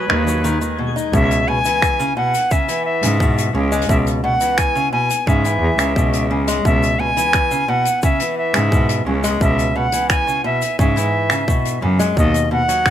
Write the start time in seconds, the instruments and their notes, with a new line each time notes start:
Already playing: synth texture G#3 G#6, flute B4
0.10 cello D#2, steel-string acoustic guitar D#3, finger snap
0.27 steel-string acoustic guitar F#3, shaker
0.44 steel-string acoustic guitar D#3, shaker
0.61 steel-string acoustic guitar D#3, shaker
0.79 steel-string acoustic guitar B2
0.96 steel-string acoustic guitar D#4, shaker
1.13 cello C#2, steel-string acoustic guitar B2, flute E5, kick, shaker
1.31 closed hi-hat, shaker
1.48 steel-string acoustic guitar B2, flute G#5
1.65 steel-string acoustic guitar E3, closed hi-hat, shaker
1.82 finger snap, kick, shaker
2.00 steel-string acoustic guitar C#3, shaker
2.17 steel-string acoustic guitar B2, flute F#5
2.34 closed hi-hat, shaker
2.51 steel-string acoustic guitar C#3, flute E5, kick, shaker
2.68 steel-string acoustic guitar E3, closed hi-hat, shaker
2.85 flute E5
3.02 cello G#2, steel-string acoustic guitar C#3, closed hi-hat, shaker
3.20 steel-string acoustic guitar B2, kick, shaker
3.38 closed hi-hat, shaker
3.55 cello C#2, steel-string acoustic guitar C#3
3.72 steel-string acoustic guitar G#3, shaker
3.81 closed hi-hat
3.89 cello C#2, steel-string acoustic guitar B2, flute E5, kick, shaker
4.07 closed hi-hat, shaker
4.24 steel-string acoustic guitar B2, flute F#5
4.41 steel-string acoustic guitar E3, closed hi-hat, shaker
4.58 flute G#5, finger snap, kick, shaker
4.75 steel-string acoustic guitar C#3, shaker
4.92 steel-string acoustic guitar B2, flute G#5
5.10 closed hi-hat, shaker
5.27 cello G#2, steel-string acoustic guitar C#3, flute E5, kick, shaker
5.44 steel-string acoustic guitar E3, closed hi-hat, shaker
5.61 cello E2
5.79 cello C#2, steel-string acoustic guitar C#3, finger snap, closed hi-hat, shaker
5.96 steel-string acoustic guitar B2, kick, shaker
6.13 closed hi-hat, shaker
6.31 steel-string acoustic guitar C#3
6.48 steel-string acoustic guitar G#3, closed hi-hat, shaker
6.65 cello C#2, steel-string acoustic guitar B2, flute E5, kick, shaker
6.83 closed hi-hat, shaker
6.99 steel-string acoustic guitar B2, flute G#5
7.17 steel-string acoustic guitar E3, closed hi-hat, shaker
7.33 finger snap, kick, shaker
7.51 steel-string acoustic guitar C#3, shaker
7.68 steel-string acoustic guitar B2, flute F#5
7.85 closed hi-hat, shaker
8.03 steel-string acoustic guitar C#3, flute E5, kick, shaker
8.20 steel-string acoustic guitar E3, closed hi-hat, shaker
8.38 flute E5
8.54 cello G#2, steel-string acoustic guitar C#3, finger snap, closed hi-hat, shaker
8.72 steel-string acoustic guitar B2, kick, shaker
8.89 closed hi-hat, shaker
9.06 cello C#2, steel-string acoustic guitar C#3
9.24 steel-string acoustic guitar G#3, closed hi-hat, shaker
9.41 cello C#2, steel-string acoustic guitar B2, flute E5, kick, shaker
9.59 closed hi-hat, shaker
9.76 steel-string acoustic guitar B2, flute F#5
9.92 steel-string acoustic guitar E3, closed hi-hat, shaker
10.10 flute G#5, finger snap, kick, shaker
10.27 steel-string acoustic guitar C#3, shaker
10.44 steel-string acoustic guitar B2, flute E5
10.62 closed hi-hat, shaker
10.79 cello G#2, steel-string acoustic guitar C#3, flute E5, kick, shaker
10.96 steel-string acoustic guitar E3, closed hi-hat, shaker
11.30 steel-string acoustic guitar C#3, finger snap, closed hi-hat, shaker
11.48 steel-string acoustic guitar B2, kick, shaker
11.65 closed hi-hat, shaker
11.82 cello F#2, steel-string acoustic guitar C#3
11.99 steel-string acoustic guitar G#3, closed hi-hat, shaker
12.16 cello D#2, steel-string acoustic guitar B2, flute D#5, kick, shaker
12.34 closed hi-hat, shaker
12.51 steel-string acoustic guitar B2, flute F#5
12.68 steel-string acoustic guitar F#3, closed hi-hat, shaker
12.86 finger snap, kick, shaker